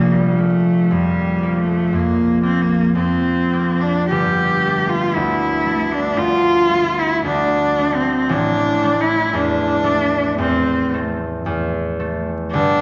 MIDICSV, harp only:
0, 0, Header, 1, 2, 480
1, 0, Start_track
1, 0, Tempo, 1041667
1, 1364, Tempo, 1132075
1, 1844, Tempo, 1050788
1, 1845, Time_signature, 4, 2, 24, 8
1, 4724, Tempo, 1067616
1, 5810, End_track
2, 0, Start_track
2, 0, Title_t, "Harp"
2, 0, Program_c, 0, 46
2, 0, Note_on_c, 0, 34, 51
2, 177, Note_on_c, 0, 58, 39
2, 418, Note_on_c, 0, 41, 38
2, 653, Note_off_c, 0, 58, 0
2, 658, Note_on_c, 0, 58, 41
2, 882, Note_off_c, 0, 41, 0
2, 887, Note_on_c, 0, 41, 40
2, 1115, Note_off_c, 0, 58, 0
2, 1121, Note_on_c, 0, 58, 44
2, 1354, Note_off_c, 0, 41, 0
2, 1359, Note_on_c, 0, 41, 44
2, 1601, Note_off_c, 0, 58, 0
2, 1606, Note_on_c, 0, 58, 43
2, 1695, Note_off_c, 0, 34, 0
2, 1849, Note_on_c, 0, 31, 54
2, 1862, Note_off_c, 0, 41, 0
2, 2101, Note_on_c, 0, 57, 44
2, 2333, Note_on_c, 0, 38, 43
2, 2555, Note_off_c, 0, 57, 0
2, 2560, Note_on_c, 0, 57, 46
2, 2790, Note_off_c, 0, 38, 0
2, 2795, Note_on_c, 0, 38, 47
2, 3029, Note_off_c, 0, 57, 0
2, 3034, Note_on_c, 0, 57, 49
2, 3280, Note_off_c, 0, 38, 0
2, 3285, Note_on_c, 0, 38, 46
2, 3370, Note_off_c, 0, 58, 0
2, 3526, Note_off_c, 0, 57, 0
2, 3532, Note_on_c, 0, 57, 48
2, 3631, Note_off_c, 0, 31, 0
2, 3763, Note_on_c, 0, 33, 64
2, 3791, Note_off_c, 0, 38, 0
2, 4001, Note_off_c, 0, 57, 0
2, 4006, Note_on_c, 0, 57, 52
2, 4236, Note_on_c, 0, 40, 48
2, 4464, Note_off_c, 0, 57, 0
2, 4469, Note_on_c, 0, 57, 55
2, 4712, Note_off_c, 0, 40, 0
2, 4718, Note_on_c, 0, 40, 54
2, 4962, Note_off_c, 0, 57, 0
2, 4967, Note_on_c, 0, 57, 52
2, 5196, Note_off_c, 0, 40, 0
2, 5201, Note_on_c, 0, 40, 57
2, 5438, Note_off_c, 0, 57, 0
2, 5444, Note_on_c, 0, 57, 53
2, 5531, Note_off_c, 0, 33, 0
2, 5685, Note_on_c, 0, 31, 69
2, 5698, Note_off_c, 0, 40, 0
2, 5810, Note_off_c, 0, 31, 0
2, 5810, Note_off_c, 0, 57, 0
2, 5810, End_track
0, 0, End_of_file